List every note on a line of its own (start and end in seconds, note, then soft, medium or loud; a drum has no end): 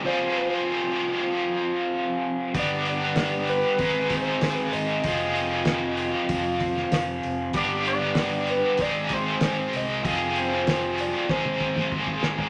0.04 2.52 F3 medium
0.04 2.53 C4 medium
0.04 2.53 F4 medium
0.04 2.53 G#4 medium
0.04 0.34 C5 medium
0.37 1.26 C5 medium
2.54 3.62 G1 medium
2.54 3.77 G3 medium
2.54 3.78 B3 medium
2.54 3.78 D4 medium
2.54 3.79 G4 medium
2.54 kick loud
2.54 open hi-hat medium
2.59 2.86 D5 medium
2.85 3.46 D5 medium
2.85 open hi-hat soft
3.16 snare loud
3.16 open hi-hat medium
3.47 4.07 B4 medium
3.47 open hi-hat soft
3.78 4.33 G#1 medium
3.78 5.03 G#3 medium
3.78 5.03 C4 medium
3.78 5.04 D#4 medium
3.78 5.04 G#4 medium
3.78 kick medium
3.78 open hi-hat medium
4.10 4.52 C5 loud
4.10 kick medium
4.10 open hi-hat medium
4.41 4.68 G#1 medium
4.41 snare loud
4.41 open hi-hat medium
4.52 4.74 B4 loud
4.73 5.00 G#1 medium
4.73 6.61 D#5 loud
4.73 open hi-hat medium
5.04 6.12 F1 medium
5.04 7.53 F3 medium
5.04 7.53 C4 medium
5.04 7.54 F4 medium
5.04 7.54 G#4 medium
5.04 kick loud
5.04 open hi-hat medium
5.36 open hi-hat soft
5.65 snare loud
5.65 open hi-hat medium
5.97 open hi-hat soft
6.29 6.83 F1 medium
6.29 kick medium
6.29 open hi-hat medium
6.60 kick medium
6.60 open hi-hat soft
6.77 snare soft
6.92 7.19 F1 medium
6.92 snare loud
6.92 open hi-hat medium
7.23 7.51 F1 medium
7.23 open hi-hat soft
7.53 8.62 G1 medium
7.53 8.78 G3 medium
7.53 8.78 B3 medium
7.53 8.78 D4 medium
7.53 8.79 G4 medium
7.53 7.85 D5 loud
7.53 kick loud
7.53 open hi-hat medium
7.85 8.51 D5 medium
7.85 open hi-hat soft
8.15 snare loud
8.15 open hi-hat medium
8.47 8.83 B4 medium
8.47 open hi-hat soft
8.77 9.33 G#1 medium
8.77 10.03 G#3 medium
8.77 10.04 C4 medium
8.77 10.05 D#4 medium
8.77 kick loud
8.77 open hi-hat medium
8.81 10.04 G#4 loud
8.81 9.14 D5 medium
9.09 9.43 C5 medium
9.09 kick medium
9.09 open hi-hat soft
9.41 9.69 G#1 medium
9.41 9.78 C5 loud
9.41 snare loud
9.41 open hi-hat medium
9.73 10.01 C2 medium
9.73 10.06 D#5 medium
9.73 open hi-hat soft
10.04 11.12 F1 medium
10.04 11.28 F3 medium
10.04 11.28 C4 medium
10.04 11.28 F4 medium
10.04 11.29 G#4 medium
10.04 10.21 D#5 loud
10.04 kick loud
10.04 open hi-hat medium
10.36 11.02 C5 medium
10.36 open hi-hat soft
10.67 snare loud
10.67 open hi-hat medium
10.98 11.31 D5 medium
10.98 open hi-hat medium
11.29 11.83 G#1 medium
11.29 12.49 G#3 medium
11.29 12.49 C4 medium
11.29 12.49 D#4 medium
11.29 12.49 G#4 medium
11.29 11.93 C5 medium
11.29 kick loud
11.29 snare medium
11.45 high tom medium
11.60 kick medium
11.76 mid tom medium
11.92 12.19 G#1 medium
11.92 kick medium
12.07 kick medium
12.22 12.49 G#1 medium
12.22 snare medium
12.38 floor tom medium